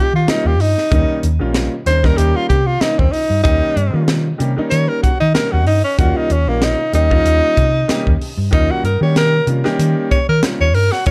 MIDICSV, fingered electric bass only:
0, 0, Header, 1, 3, 480
1, 0, Start_track
1, 0, Tempo, 634249
1, 692, Time_signature, 4, 2, 24, 8
1, 8407, End_track
2, 0, Start_track
2, 0, Title_t, "Fingered electric bass"
2, 0, Program_c, 0, 33
2, 101, Note_on_c, 0, 51, 81
2, 192, Note_off_c, 0, 51, 0
2, 341, Note_on_c, 0, 39, 94
2, 448, Note_off_c, 0, 39, 0
2, 448, Note_on_c, 0, 43, 98
2, 559, Note_off_c, 0, 43, 0
2, 692, Note_on_c, 0, 39, 88
2, 801, Note_off_c, 0, 39, 0
2, 933, Note_on_c, 0, 39, 87
2, 1042, Note_off_c, 0, 39, 0
2, 1063, Note_on_c, 0, 34, 82
2, 1262, Note_off_c, 0, 34, 0
2, 1408, Note_on_c, 0, 39, 82
2, 1608, Note_off_c, 0, 39, 0
2, 1646, Note_on_c, 0, 39, 96
2, 1758, Note_off_c, 0, 39, 0
2, 1892, Note_on_c, 0, 48, 81
2, 2090, Note_off_c, 0, 48, 0
2, 2263, Note_on_c, 0, 39, 78
2, 2352, Note_off_c, 0, 39, 0
2, 2496, Note_on_c, 0, 43, 78
2, 2588, Note_off_c, 0, 43, 0
2, 2612, Note_on_c, 0, 39, 81
2, 2721, Note_off_c, 0, 39, 0
2, 2846, Note_on_c, 0, 43, 84
2, 2957, Note_off_c, 0, 43, 0
2, 2979, Note_on_c, 0, 51, 86
2, 3268, Note_off_c, 0, 51, 0
2, 3329, Note_on_c, 0, 48, 88
2, 3439, Note_off_c, 0, 48, 0
2, 3570, Note_on_c, 0, 51, 86
2, 3679, Note_off_c, 0, 51, 0
2, 3946, Note_on_c, 0, 51, 84
2, 4033, Note_off_c, 0, 51, 0
2, 4186, Note_on_c, 0, 39, 94
2, 4286, Note_off_c, 0, 39, 0
2, 4286, Note_on_c, 0, 43, 97
2, 4397, Note_off_c, 0, 43, 0
2, 4531, Note_on_c, 0, 39, 89
2, 4640, Note_off_c, 0, 39, 0
2, 4768, Note_on_c, 0, 39, 98
2, 4878, Note_off_c, 0, 39, 0
2, 4894, Note_on_c, 0, 34, 93
2, 5096, Note_off_c, 0, 34, 0
2, 5246, Note_on_c, 0, 39, 86
2, 5446, Note_off_c, 0, 39, 0
2, 5487, Note_on_c, 0, 39, 100
2, 5597, Note_off_c, 0, 39, 0
2, 5733, Note_on_c, 0, 48, 82
2, 5930, Note_off_c, 0, 48, 0
2, 6105, Note_on_c, 0, 39, 81
2, 6192, Note_off_c, 0, 39, 0
2, 6337, Note_on_c, 0, 43, 78
2, 6428, Note_off_c, 0, 43, 0
2, 6456, Note_on_c, 0, 39, 89
2, 6562, Note_off_c, 0, 39, 0
2, 6686, Note_on_c, 0, 43, 82
2, 6797, Note_off_c, 0, 43, 0
2, 6817, Note_on_c, 0, 51, 90
2, 7107, Note_off_c, 0, 51, 0
2, 7165, Note_on_c, 0, 48, 99
2, 7276, Note_off_c, 0, 48, 0
2, 7409, Note_on_c, 0, 51, 93
2, 7518, Note_off_c, 0, 51, 0
2, 7786, Note_on_c, 0, 51, 88
2, 7873, Note_off_c, 0, 51, 0
2, 8025, Note_on_c, 0, 39, 94
2, 8135, Note_off_c, 0, 39, 0
2, 8135, Note_on_c, 0, 43, 103
2, 8242, Note_off_c, 0, 43, 0
2, 8374, Note_on_c, 0, 39, 88
2, 8407, Note_off_c, 0, 39, 0
2, 8407, End_track
3, 0, Start_track
3, 0, Title_t, "Muted fingered electric bass strokes"
3, 210, Note_on_c, 9, 29, 31
3, 286, Note_off_c, 9, 29, 0
3, 2127, Note_on_c, 9, 29, 33
3, 2202, Note_off_c, 9, 29, 0
3, 3462, Note_on_c, 9, 29, 34
3, 3537, Note_off_c, 9, 29, 0
3, 3811, Note_on_c, 9, 29, 34
3, 3887, Note_off_c, 9, 29, 0
3, 4056, Note_on_c, 9, 29, 34
3, 4132, Note_off_c, 9, 29, 0
3, 5969, Note_on_c, 9, 29, 35
3, 6045, Note_off_c, 9, 29, 0
3, 6206, Note_on_c, 9, 29, 40
3, 6282, Note_off_c, 9, 29, 0
3, 7307, Note_on_c, 9, 29, 37
3, 7383, Note_off_c, 9, 29, 0
3, 7654, Note_on_c, 9, 29, 37
3, 7730, Note_off_c, 9, 29, 0
3, 7894, Note_on_c, 9, 29, 35
3, 7970, Note_off_c, 9, 29, 0
3, 8407, End_track
0, 0, End_of_file